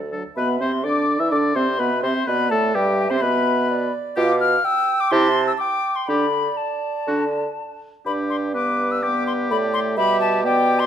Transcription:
Already playing: D2 D5
0.12 F#3 D4 A4
0.36 B2 B3 B4 E5 B5
0.60 C3 C4 C5 C6
0.84 D3 D4 D5 D6
1.19 E3 E4 E5 E6
1.31 D3 D4 D5 D6
1.54 C3 C4 C5 C6
1.79 B2 B3 B4 E5 B5
2.03 C3 C4 C5 C6
2.27 B2 B3 B4 D5 B5
2.50 A2 A3 A4 A5
2.75 G2 G3 G4 E5 G5
3.10 C3 C4 C5 C6
3.21 B2 B3 B4 B5
3.70 D5
4.16 B2 F4 G4 F5 D6
4.40 F6
4.64 G5 E6
5.00 D6
5.11 C3 E4 G4 A5 C6
5.47 E6
5.58 G5 D6
5.96 C6
6.07 D3 D4 G4 D5 B5
6.57 A5
7.07 D3 D4 F#4
8.06 G2 D4 G4 B5
8.30 C6
8.54 B3 B4 D6
8.91 E6
9.03 B3 G4 B4 D6
9.27 C6
9.51 A2 A3 D5 B5
9.74 C6
9.97 B2 G3 G4 E5 B5
10.21 A5
10.44 B3 G4 D5 G5
10.79 C6

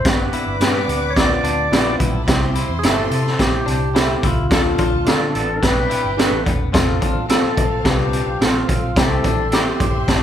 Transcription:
0.05 G1 B3 D4 G4 B4 D5 D6, kick, snare, closed hi-hat
0.33 E4, closed hi-hat
0.46 G1
0.59 G2 B3 D4 G4 B4 D5, snare, closed hi-hat
0.88 D2, closed hi-hat
1.10 C#5
1.16 A#3 D4 F4 D5, kick, snare, closed hi-hat
1.22 B3
1.44 D2 D4, closed hi-hat
1.71 A#1 B3 D4 E4 F4 G4 B4 D5, snare, closed hi-hat
1.86 D4 D5
1.94 E4 E5
1.99 B1 E4 F4 F5, kick, closed hi-hat
2.08 G4 G5
2.14 A4 A5
2.22 B4 B5
2.27 C2 C4 E4 G4 C5 C6, kick, snare, closed hi-hat
2.55 E4, closed hi-hat
2.69 E2
2.79 G#4
2.83 G1 C4 E4 G4 A4 C5 E5, snare, closed hi-hat
3.10 C3, closed hi-hat
3.26 snare
3.38 C4 E4 G4, kick, snare, closed hi-hat
3.42 G4
3.52 muted fingered electric bass stroke
3.66 C2 D4, closed hi-hat
3.94 C4 E4 G4 A4 C5 E5, snare, closed hi-hat
4.23 C#2 E4 F4, kick, closed hi-hat
4.50 D2 D4 F4 A4 A5, kick, snare, closed hi-hat
4.78 F4, kick, closed hi-hat
4.93 D2
5.05 D3 D4 F4 A4 D5, snare, closed hi-hat
5.09 A4
5.35 A1 B3 D4 A4, closed hi-hat
5.62 G1 D4 G4 B4 G5, kick, snare, closed hi-hat
5.77 B1
5.90 E4, closed hi-hat
6.04 G1
6.17 D4 G4 A4 B4 D5, snare, closed hi-hat
6.31 A1
6.45 E1 B3, kick, closed hi-hat
6.72 F1 C4 F4 A4 F5, kick, snare, closed hi-hat
7.01 A1 D4, kick, closed hi-hat
7.29 C4 F4 A4 C5, snare, closed hi-hat
7.43 muted fingered electric bass stroke
7.57 B1, kick, closed hi-hat
7.83 C2 C4 D4 F4 G4 B4, kick, snare, closed hi-hat
8.13 closed hi-hat
8.27 B1
8.40 A1 C4 F4 A4 C5, snare, closed hi-hat
8.68 B1 C4, kick, closed hi-hat
8.96 C2 C4 E4 G4 A4 E5 C6, kick, snare, closed hi-hat
9.24 A1 D4, kick, closed hi-hat
9.51 C4 E4 G4 A4 C5, snare, closed hi-hat
9.80 G1 G4, kick, closed hi-hat
10.06 G1 C4 D4 G4, kick, snare, closed hi-hat
10.14 E4

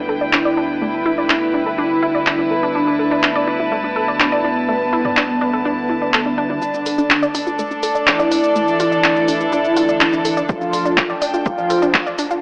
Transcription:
Already playing: D2 D3 G3 B3 D4 E4 A4 B4 G5
0.09 A4
0.21 D5
0.33 D4 E4, clap
0.45 D5
0.57 D4
0.81 A3
1.06 E4
1.18 D5
1.30 D4, clap
1.54 D4
1.66 A4
1.78 D4
2.02 E4
2.15 D5
2.27 D4, clap
2.39 D4
2.51 A4
2.63 D4
2.70 A5
2.75 D4
2.87 D4
2.99 A4
3.11 D4
3.23 D4, clap
3.35 D5
3.48 D4
3.60 E4
3.72 A3
3.84 D4
3.96 A4
4.08 D5
4.20 B3 D4, clap
4.32 D5
4.44 D4
4.68 A3
4.93 E4
5.05 D5, mid tom
5.17 D4, clap
5.41 D4
5.53 A4
5.65 D4
5.90 E4
6.02 D4
6.14 A4, clap
6.26 D4
6.38 D4
6.50 D4
6.62 D3 A3 D4 A4 D5 A5, shaker
6.74 D4, shaker
6.86 A4, open hi-hat, shaker
6.98 D4, shaker
7.05 D5
7.10 D4, clap, shaker
7.23 D5, shaker
7.35 D4, open hi-hat, shaker
7.47 F4, shaker
7.59 A3, shaker
7.71 D4, shaker
7.83 A4, open hi-hat, shaker
7.95 D5, shaker
8.07 E3 D4 E4, clap, shaker
8.19 D5, shaker
8.31 D4, open hi-hat, shaker
8.44 shaker
8.56 A3, shaker
8.68 shaker
8.80 F4, open hi-hat, shaker
8.92 D5, shaker
9.04 D4, clap, shaker
9.16 shaker
9.28 D4, open hi-hat, shaker
9.40 A4, shaker
9.52 D4, shaker
9.65 shaker
9.77 F4, open hi-hat, shaker
9.89 D5, shaker
10.01 D4, clap, shaker
10.13 D4, shaker
10.25 A4, open hi-hat, shaker
10.37 D4, shaker
10.49 F3 D4 F4, kick, shaker
10.61 D4, shaker
10.73 A4, open hi-hat, shaker
10.85 D4, shaker
10.95 D4 G5, kick, clap, shaker
11.10 D5, shaker
11.22 D4, open hi-hat, shaker
11.34 F4, shaker
11.46 F3 D4 F4, kick, shaker
11.58 D4, shaker
11.70 A4, open hi-hat, shaker
11.82 D4, shaker
11.94 D4, kick, clap, shaker
12.06 D5, shaker
12.18 D4, open hi-hat, shaker
12.31 F4, shaker

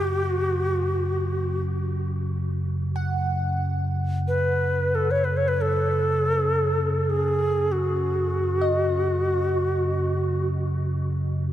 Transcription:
Already playing: F#2 C#3 G4
0.24 F#4
2.96 F#5
4.28 B4
4.95 A4
5.11 C#5
5.24 B4
5.37 C#5
5.48 B4
5.61 A4
7.10 G#4
7.72 F#4
8.61 D#5

